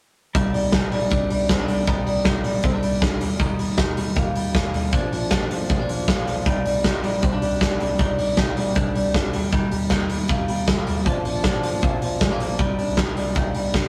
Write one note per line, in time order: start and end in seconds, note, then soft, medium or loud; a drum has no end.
0.35 0.50 C2 medium
0.35 0.54 C3 medium
0.35 0.53 G3 medium
0.35 0.54 G3 medium
0.35 0.54 C4 medium
0.35 0.73 D#4 medium
0.35 0.54 D#4 medium
0.35 0.53 G4 medium
0.35 0.52 D5 medium
0.35 kick loud
0.35 closed hi-hat medium
0.53 0.70 C2 medium
0.53 0.92 G3 medium
0.53 0.71 C4 soft
0.53 0.73 D#4 soft
0.53 0.73 G4 medium
0.53 0.72 D5 medium
0.53 open hi-hat medium
0.72 0.89 C2 medium
0.72 1.88 D#4 medium
0.72 0.91 G4 medium
0.72 0.90 D5 medium
0.72 kick loud
0.72 snare loud
0.91 1.08 A#1 medium
0.91 1.30 G3 medium
0.91 1.11 C4 soft
0.91 1.11 D#4 medium
0.91 1.11 G4 medium
0.91 1.11 D5 medium
0.91 open hi-hat medium
1.11 1.27 C2 medium
1.11 1.30 C3 medium
1.11 1.30 G3 medium
1.11 1.31 C4 medium
1.11 1.49 D4 medium
1.11 1.31 D#4 medium
1.11 1.30 G4 medium
1.11 1.29 D5 loud
1.11 kick loud
1.11 closed hi-hat medium
1.30 1.46 C2 medium
1.30 1.68 G3 medium
1.30 1.48 C4 soft
1.30 1.49 D#4 soft
1.30 1.49 G4 medium
1.30 1.49 D5 medium
1.30 open hi-hat medium
1.49 1.68 C4 medium
1.49 1.59 C4 medium
1.49 1.68 D#4 medium
1.49 1.68 G4 medium
1.49 1.67 D5 medium
1.49 kick loud
1.49 snare loud
1.49 closed hi-hat medium
1.59 2.63 D4 soft
1.68 1.84 C2 loud
1.68 1.87 G3 medium
1.68 1.87 C4 soft
1.68 1.88 D#4 medium
1.68 1.88 G4 soft
1.68 1.87 D5 medium
1.68 open hi-hat medium
1.87 2.03 C2 loud
1.87 2.06 C3 medium
1.87 2.06 G3 medium
1.87 2.07 G3 medium
1.87 2.07 C4 medium
1.87 2.25 D#4 medium
1.87 2.07 D#4 medium
1.87 2.06 G4 medium
1.87 2.05 D5 medium
1.87 kick loud
1.87 closed hi-hat medium
2.06 2.22 C2 medium
2.06 2.44 G3 medium
2.06 2.24 C4 soft
2.06 2.25 D#4 medium
2.06 2.25 G4 medium
2.06 2.25 D5 medium
2.06 open hi-hat medium
2.25 2.41 C2 medium
2.25 3.25 D#4 medium
2.25 2.44 D#4 medium
2.25 2.43 G4 medium
2.25 2.42 D5 medium
2.25 kick loud
2.25 snare loud
2.25 closed hi-hat medium
2.43 2.60 A#1 medium
2.43 2.82 G3 medium
2.43 2.63 C4 soft
2.43 2.63 D#4 soft
2.43 2.63 G4 medium
2.43 2.63 D5 medium
2.43 open hi-hat medium
2.63 2.79 C2 medium
2.63 2.82 C3 medium
2.63 2.82 G3 medium
2.63 2.73 C4 medium
2.63 2.83 C4 medium
2.63 2.82 D#4 medium
2.63 2.82 G4 medium
2.63 2.81 D5 medium
2.63 kick loud
2.63 closed hi-hat medium
2.73 3.00 D4 medium
2.82 2.99 C2 loud
2.82 3.20 G3 medium
2.82 2.99 C4 soft
2.82 3.00 D#4 soft
2.82 3.01 G4 medium
2.82 3.01 D5 medium
2.82 open hi-hat medium
3.01 3.17 C2 loud
3.01 3.20 C4 medium
3.01 3.25 D4 medium
3.01 kick loud
3.01 snare medium
3.01 closed hi-hat medium
3.20 3.52 D#2 loud
3.20 3.39 G3 medium
3.20 3.38 D#4 soft
3.20 3.38 G4 soft
3.20 3.39 A#4 medium
3.20 open hi-hat medium
3.38 3.58 D#3 medium
3.38 3.58 G3 medium
3.38 3.58 A#3 medium
3.38 3.59 D#4 medium
3.38 3.77 D#4 medium
3.38 3.58 G4 medium
3.38 3.56 A#4 medium
3.38 kick loud
3.38 closed hi-hat medium
3.58 3.74 D#2 medium
3.58 3.96 G3 medium
3.58 3.77 D#4 medium
3.58 3.78 G4 medium
3.58 3.77 A#4 medium
3.58 open hi-hat medium
3.77 3.94 D#2 loud
3.77 3.97 A#3 medium
3.77 3.97 D#4 medium
3.77 4.93 D#4 medium
3.77 3.96 G4 medium
3.77 3.94 A#4 medium
3.77 kick loud
3.77 snare loud
3.96 4.13 D#2 medium
3.96 4.35 G3 medium
3.96 4.15 D#4 medium
3.96 4.15 G4 medium
3.96 4.16 A#4 medium
3.96 open hi-hat medium
4.14 4.32 D#2 medium
4.14 4.34 D#3 medium
4.14 4.35 A#3 medium
4.14 4.54 A#3 medium
4.14 4.35 D#4 medium
4.14 4.34 G4 medium
4.14 4.32 A#4 medium
4.14 kick loud
4.14 closed hi-hat medium
4.33 4.51 D#2 medium
4.33 4.73 G3 medium
4.33 4.53 D#4 soft
4.33 4.54 G4 soft
4.33 4.54 A#4 medium
4.33 open hi-hat medium
4.53 4.73 A#3 medium
4.53 4.97 A#3 medium
4.53 4.72 A#4 medium
4.53 kick loud
4.53 snare loud
4.53 closed hi-hat medium
4.73 4.93 D#2 medium
4.73 4.93 G3 medium
4.73 4.93 D#4 soft
4.73 4.93 G4 soft
4.73 4.92 A#4 medium
4.73 open hi-hat medium
4.92 5.09 A#1 loud
4.92 5.12 A#2 medium
4.92 5.12 F3 medium
4.92 5.11 F3 medium
4.92 5.12 A#3 medium
4.92 5.12 D4 medium
4.92 5.31 D4 medium
4.92 5.11 F4 medium
4.92 5.10 A#4 medium
4.92 kick loud
4.92 closed hi-hat medium
5.11 5.27 A#1 medium
5.11 5.49 F3 medium
5.11 5.29 A#3 soft
5.11 5.30 D4 medium
5.11 5.31 F4 medium
5.11 5.31 A#4 medium
5.11 open hi-hat medium
5.30 5.50 A#1 medium
5.30 5.50 A#3 medium
5.30 6.46 D4 medium
5.30 5.50 F4 medium
5.30 5.49 A#4 medium
5.30 kick loud
5.30 snare loud
5.30 closed hi-hat medium
5.50 5.66 G#1 medium
5.50 5.87 F3 medium
5.50 5.68 A#3 soft
5.50 5.69 D4 soft
5.50 5.69 F4 medium
5.50 5.69 A#4 medium
5.50 open hi-hat medium
5.69 5.85 A#1 medium
5.69 5.88 A#2 medium
5.69 5.89 F3 medium
5.69 5.79 G#3 medium
5.69 5.89 A#3 medium
5.69 5.88 D4 medium
5.69 5.87 F4 medium
5.69 5.86 A#4 medium
5.69 kick loud
5.69 closed hi-hat medium
5.79 6.07 A#3 soft
5.87 6.04 A#1 medium
5.87 6.26 F3 medium
5.87 6.06 A#3 soft
5.87 6.07 D4 medium
5.87 6.08 F4 medium
5.87 6.07 A#4 medium
5.87 open hi-hat medium
6.07 6.26 A#3 medium
6.07 6.50 A#3 medium
6.07 6.27 D4 medium
6.07 kick loud
6.07 snare loud
6.07 closed hi-hat medium
6.26 6.42 A#1 medium
6.26 6.46 F3 medium
6.26 6.46 A#3 soft
6.26 6.46 D4 soft
6.26 6.46 F4 soft
6.26 6.46 A#4 medium
6.26 open hi-hat medium
6.46 6.62 C2 medium
6.46 6.65 C3 medium
6.46 6.65 G3 medium
6.46 6.65 C4 medium
6.46 6.65 D#4 medium
6.46 6.84 D#4 medium
6.46 6.64 G4 medium
6.46 6.63 D5 medium
6.46 kick loud
6.46 closed hi-hat medium
6.64 6.81 C2 medium
6.64 7.03 G3 medium
6.64 6.82 C4 soft
6.64 6.83 D#4 soft
6.64 6.84 G4 medium
6.64 6.84 D5 medium
6.64 open hi-hat medium
6.84 7.00 C2 medium
6.84 7.03 C4 medium
6.84 7.99 D#4 medium
6.84 7.03 G4 medium
6.84 kick loud
6.84 snare loud
6.84 closed hi-hat medium
7.03 7.19 A#1 medium
7.03 7.42 G3 medium
7.03 7.21 C4 soft
7.03 7.22 D#4 medium
7.03 7.22 G4 soft
7.03 7.22 D5 medium
7.03 open hi-hat medium
7.22 7.38 C2 medium
7.22 7.41 C3 medium
7.22 7.42 G3 medium
7.22 7.32 C4 medium
7.22 7.42 C4 medium
7.22 7.42 D#4 medium
7.22 7.41 G4 medium
7.22 7.40 D5 medium
7.22 kick loud
7.22 closed hi-hat medium
7.32 7.60 D4 soft
7.41 7.58 C2 medium
7.41 7.80 G3 medium
7.41 7.59 C4 soft
7.41 7.60 D#4 soft
7.41 7.61 G4 soft
7.41 7.60 D5 medium
7.41 open hi-hat medium
7.60 7.80 C4 medium
7.60 8.74 D4 medium
7.60 kick loud
7.60 snare loud
7.60 closed hi-hat medium
7.78 7.96 C2 medium
7.78 7.99 G3 medium
7.78 7.98 C4 soft
7.78 7.99 D#4 soft
7.78 7.99 G4 medium
7.78 7.98 D5 medium
7.78 open hi-hat medium
7.99 8.15 C2 medium
7.99 8.18 C3 medium
7.99 8.18 G3 medium
7.99 8.19 C4 medium
7.99 8.37 D#4 medium
7.99 8.19 D#4 medium
7.99 8.18 G4 medium
7.99 8.16 D5 medium
7.99 kick loud
7.99 closed hi-hat medium
8.18 8.34 C2 medium
8.18 8.56 G3 medium
8.18 8.36 C4 soft
8.18 8.37 D#4 medium
8.18 8.38 G4 medium
8.18 8.37 D5 medium
8.18 open hi-hat medium
8.37 8.53 C2 medium
8.37 9.37 D#4 medium
8.37 kick loud
8.37 snare loud
8.56 8.72 A#1 medium
8.56 8.94 G3 medium
8.56 8.75 C4 soft
8.56 8.76 D#4 medium
8.56 8.76 G4 medium
8.56 8.76 D5 medium
8.56 open hi-hat medium
8.75 8.92 C2 medium
8.75 8.95 C3 medium
8.75 8.95 G3 medium
8.75 8.95 C4 medium
8.75 9.13 D4 medium
8.75 8.96 D#4 medium
8.75 8.95 G4 medium
8.75 8.94 D5 medium
8.75 kick loud
8.75 closed hi-hat medium
8.94 9.11 C2 medium
8.94 9.32 G3 medium
8.94 9.12 C4 soft
8.94 9.13 D#4 medium
8.94 9.14 G4 medium
8.94 9.14 D5 medium
8.94 open hi-hat medium
9.13 9.30 C2 loud
9.13 9.33 C4 medium
9.13 9.37 D4 medium
9.13 9.33 D#4 medium
9.13 9.32 G4 medium
9.13 9.34 D5 medium
9.13 kick loud
9.13 snare medium
9.13 closed hi-hat medium
9.33 9.65 D#2 loud
9.33 9.51 G3 medium
9.33 9.52 A#3 soft
9.33 9.52 D#4 soft
9.33 9.52 G4 medium
9.33 open hi-hat medium
9.52 9.72 D#3 medium
9.52 9.71 G3 medium
9.52 9.72 A#3 medium
9.52 9.90 D#4 medium
9.52 9.72 D#4 medium
9.52 9.71 G4 medium
9.52 kick loud
9.52 closed hi-hat medium
9.71 9.87 D#2 medium
9.71 10.09 G3 medium
9.71 9.90 A#3 soft
9.71 9.91 D#4 medium
9.71 9.91 G4 medium
9.71 open hi-hat medium
9.90 10.06 D#2 medium
9.90 10.10 D#3 medium
9.90 10.10 A#3 medium
9.90 11.06 D#4 medium
9.90 10.10 D#4 medium
9.90 10.09 G4 medium
9.90 kick loud
9.90 snare loud
10.10 10.26 D#2 medium
10.10 10.47 G3 medium
10.10 10.28 A#3 medium
10.10 10.29 D#4 medium
10.10 10.29 G4 medium
10.10 open hi-hat medium
10.28 10.45 D#2 medium
10.28 10.48 D#3 medium
10.28 10.48 A#3 medium
10.28 10.68 A#3 medium
10.28 10.48 D#4 medium
10.28 10.46 G4 medium
10.28 kick loud
10.28 closed hi-hat medium
10.47 10.65 D#2 medium
10.47 10.86 G3 medium
10.47 10.67 A#3 soft
10.47 10.68 D#4 medium
10.47 10.67 G4 medium
10.47 open hi-hat medium
10.67 10.86 D#3 medium
10.67 10.78 G#3 medium
10.67 10.87 A#3 medium
10.67 kick loud
10.67 snare loud
10.67 closed hi-hat medium
10.78 11.10 A#3 medium
10.86 11.06 D#2 medium
10.86 11.06 G3 medium
10.86 11.06 A#3 soft
10.86 11.06 D#4 medium
10.86 11.05 G4 medium
10.86 open hi-hat medium
11.06 11.22 A#1 loud
11.06 11.25 A#2 medium
11.06 11.24 F3 medium
11.06 11.25 F3 medium
11.06 11.25 A#3 medium
11.06 11.44 D4 medium
11.06 11.25 D4 medium
11.06 11.23 F4 medium
11.06 kick loud
11.06 closed hi-hat medium
11.24 11.41 A#1 medium
11.24 11.62 F3 medium
11.24 11.43 A#3 soft
11.24 11.44 D4 medium
11.24 11.44 F4 medium
11.24 open hi-hat medium
11.43 11.63 F3 medium
11.43 12.59 D4 medium
11.43 11.63 D4 medium
11.43 11.61 F4 medium
11.43 kick loud
11.43 snare loud
11.43 closed hi-hat medium
11.62 11.79 G#1 medium
11.62 12.01 F3 medium
11.62 11.82 A#3 soft
11.62 11.83 D4 soft
11.62 11.82 F4 medium
11.62 open hi-hat medium
11.82 11.98 A#1 medium
11.82 12.02 A#2 medium
11.82 12.02 F3 medium
11.82 12.20 A#3 medium
11.82 12.02 A#3 medium
11.82 12.01 D4 medium
11.82 11.99 F4 medium
11.82 kick loud
11.82 closed hi-hat medium
12.00 12.18 A#1 medium
12.00 12.39 F3 medium
12.00 12.20 A#3 soft
12.00 12.21 D4 medium
12.00 12.20 F4 medium
12.00 open hi-hat medium
12.21 12.31 G#3 medium
12.21 12.39 D4 medium
12.21 12.38 F4 medium
12.21 kick loud
12.21 snare medium
12.21 closed hi-hat medium
12.31 12.63 A#3 soft
12.39 12.56 A#1 medium
12.39 12.59 F3 soft
12.39 12.59 A#3 soft
12.39 12.59 D4 soft
12.39 12.59 F4 soft
12.39 open hi-hat medium
12.58 12.75 C2 medium
12.58 12.78 C3 medium
12.58 12.78 G3 medium
12.58 13.16 G3 medium
12.58 12.78 C4 medium
12.58 12.78 D#4 medium
12.58 12.97 D#4 medium
12.58 12.78 G4 medium
12.58 12.77 D5 medium
12.58 kick loud
12.58 closed hi-hat medium
12.78 12.97 C4 soft
12.78 13.73 D4 soft
12.78 12.97 D#4 soft
12.78 12.97 G4 medium
12.78 12.97 D5 medium
12.78 open hi-hat medium
12.88 12.96 C2 medium
12.97 13.17 G3 medium
12.97 13.36 D#4 medium
12.97 13.15 G4 medium
12.97 13.14 D5 medium
12.97 kick medium
12.97 snare loud
13.16 13.32 C2 medium
13.16 13.55 G3 medium
13.16 13.34 C4 soft
13.16 13.35 D#4 medium
13.16 13.35 G4 soft
13.16 13.35 D5 medium
13.16 open hi-hat medium
13.35 13.52 C2 medium
13.35 13.55 C4 medium
13.35 13.88 D#4 medium
13.35 13.55 D#4 medium
13.35 13.54 G4 medium
13.35 13.53 D5 medium
13.35 kick loud
13.35 closed hi-hat medium
13.54 13.71 C2 medium
13.54 13.88 G3 medium
13.54 13.73 C4 soft
13.54 13.73 D#4 soft
13.54 13.74 G4 medium
13.54 13.74 D5 medium
13.54 open hi-hat medium
13.73 13.88 C2 medium
13.73 13.88 C3 medium
13.73 13.88 G3 medium
13.73 13.88 C4 medium
13.73 13.88 D4 medium
13.73 13.88 D#4 medium
13.73 13.88 G4 medium
13.73 13.88 D5 medium
13.73 kick loud
13.73 snare medium
13.73 closed hi-hat medium